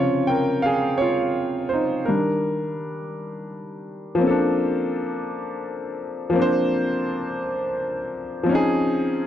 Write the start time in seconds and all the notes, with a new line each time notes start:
Already playing: C3 C#3 F3 F4 C#5
0.27 A#4 G5
0.62 G#4 F5
0.98 F4 C#5
1.69 C5
1.73 D#4
2.05 D#3 G3 D4 A#4
4.15 F3 A#3
4.21 C4 C#4
4.27 D4 A4
6.30 F3 A#3
6.36 C4 D4
6.42 C5
8.43 F3 C4
8.49 C#4 D#4
8.55 G#4